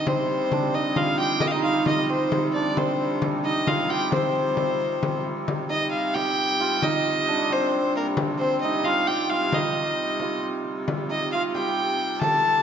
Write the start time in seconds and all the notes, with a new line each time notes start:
Already playing: D#4 G4
0.06 C3 G3 C4 C5, frame drum
0.52 D4, frame drum
0.74 D#4 D#5
0.96 F4 F5, frame drum
1.19 G4 G5, frame drum
1.40 D#4 D#5, frame drum
1.47 F5
1.52 D#4 D#5
1.63 F4 F5
1.86 D#4 D#5, frame drum
2.10 C4 C5
2.32 frame drum
2.54 D4 D5, frame drum
2.77 C4 C5, frame drum
3.22 frame drum
3.45 D#4 D#5
3.67 F4 F5, frame drum
3.89 G4 G5, frame drum
4.12 C4 C5, frame drum
4.57 frame drum
5.03 frame drum
5.26 frame drum
5.46 C3 G3, frame drum
5.70 D#4 D#5, frame drum
5.91 F5, frame drum
6.14 G4 G5, frame drum
6.61 F4
6.82 D#4 D#5, frame drum
7.05 frame drum
7.28 D4, frame drum
7.50 C4 C5, frame drum
7.75 C4
7.96 A#3 A#4
8.17 frame drum
8.39 C4 C5, frame drum
8.61 D#4 D#5, frame drum
8.84 F4 F5, frame drum
9.08 G4 G5
9.30 F4 F5
9.52 D#4 D#5, frame drum
10.20 F4, frame drum
10.65 frame drum
10.87 C3 G3, frame drum
11.10 D#4 D#5, frame drum
11.32 F4 F5, frame drum
11.55 G4 G5, frame drum
12.21 A4 A5, frame drum